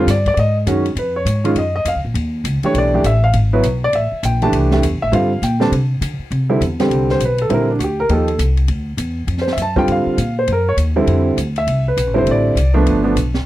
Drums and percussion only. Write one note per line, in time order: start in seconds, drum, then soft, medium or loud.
0.08 snare soft
0.08 hi-hat pedal medium
0.08 ride medium
0.26 kick medium
0.26 ride soft
0.37 ride medium
0.67 hi-hat pedal medium
0.67 ride medium
0.86 ride soft
0.97 ride medium
1.26 hi-hat pedal medium
1.26 ride medium
1.45 ride soft
1.56 ride medium
1.85 hi-hat pedal medium
1.85 ride medium
2.15 ride medium
2.45 hi-hat pedal medium
2.45 ride medium
2.63 ride soft
2.75 ride medium
3.04 hi-hat pedal medium
3.04 ride medium
3.33 ride medium
3.63 hi-hat pedal medium
3.63 ride medium
3.93 ride medium
4.23 hi-hat pedal medium
4.23 ride medium
4.42 ride soft
4.53 ride medium
4.71 snare medium
4.83 hi-hat pedal medium
4.83 ride medium
5.13 ride medium
5.43 hi-hat pedal medium
5.43 ride medium
5.61 snare soft
5.72 ride medium
6.02 hi-hat pedal medium
6.02 ride medium
6.31 ride medium
6.62 hi-hat pedal soft
6.62 ride medium
6.79 snare soft
6.79 ride soft
6.91 ride medium
7.09 snare soft
7.20 hi-hat pedal medium
7.20 ride medium
7.38 ride soft
7.50 ride soft
7.80 hi-hat pedal medium
7.80 ride medium
8.09 ride medium
8.28 ride soft
8.39 hi-hat pedal medium
8.39 ride medium
8.57 ride soft
8.68 ride medium
8.98 hi-hat pedal medium
8.98 ride medium
9.28 ride medium
9.38 snare soft
9.47 snare soft
9.58 hi-hat pedal medium
9.58 ride medium
9.76 kick medium
9.88 ride medium
10.18 hi-hat pedal medium
10.18 ride medium
10.48 ride medium
10.78 hi-hat pedal medium
10.78 ride medium
11.07 ride medium
11.38 hi-hat pedal medium
11.38 ride medium
11.56 ride soft
11.68 ride medium
11.97 hi-hat pedal medium
11.97 ride medium
12.27 ride medium
12.57 hi-hat pedal medium
12.57 ride medium
12.87 ride medium
13.17 hi-hat pedal medium
13.17 ride medium
13.34 snare medium